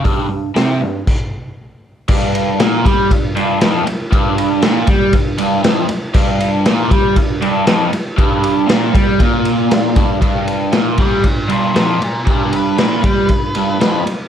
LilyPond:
<<
  \new Staff \with { instrumentName = "Lead electric guitar" } { \time 4/4 \key f \lydian \tempo 4 = 118 r1 | r1 | r1 | r1 |
r1 | r4. <d'' f''>8 <d'' f''>8 <bes' d''>8 <bes' d''>8 <f' bes'>8 | <f' bes'>8 b'2. r8 | }
  \new Staff \with { instrumentName = "Overdriven electric guitar" } { \clef bass \time 4/4 \key f \lydian g,8 g,8 c8 g,8 r2 | g,4 bes,8 g8 g,8 g,8 f,8 r8 | g,4 bes,8 g8 g,8 g,8 f,8 r8 | g,4 bes,8 g8 g,8 g,8 f,8 r8 |
g,4 bes,8 g8 bes,4. g,8 | g,4 bes,8 g8 g,8 g,8 f,8 r8 | g,4 bes,8 g8 g,8 g,8 f,8 r8 | }
  \new DrumStaff \with { instrumentName = "Drums" } \drummode { \time 4/4 <hho bd>4 <hho sn>4 <cymc bd>4 r4 | <cymc bd>8 cymr8 <cymr sn>8 <bd cymr>8 <bd cymr>8 cymr8 <cymr sn>8 cymr8 | <bd cymr>8 cymr8 <cymr sn>8 <bd cymr>8 <bd cymr>8 cymr8 <cymr sn>8 cymr8 | <cymc bd>8 cymr8 <cymr sn>8 <bd cymr>8 <bd cymr>8 cymr8 <cymr sn>8 cymr8 |
<bd cymr>8 cymr8 <cymr sn>8 <bd cymr>8 <bd cymr>8 cymr8 <cymr sn>8 <bd cymr>8 | <bd cymr>8 cymr8 <cymr sn>8 <bd cymr>8 <bd cymr>8 cymr8 <cymr sn>8 cymr8 | <bd cymr>8 cymr8 <cymr sn>8 <bd cymr>8 <bd cymr>8 cymr8 <cymr sn>8 cymr8 | }
>>